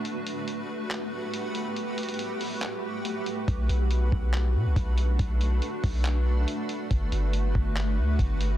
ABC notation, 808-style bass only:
X:1
M:4/4
L:1/16
Q:1/4=140
K:Glyd
V:1 name="808-style bass" clef=bass
z16 | z16 | B,,,2 B,,,4 B,,,4 B,, B,,, B,,,4 | B,,,4 z2 B,,,6 z4 |
G,,,2 G,,,4 G,,,4 D,,2 G,,,4 |]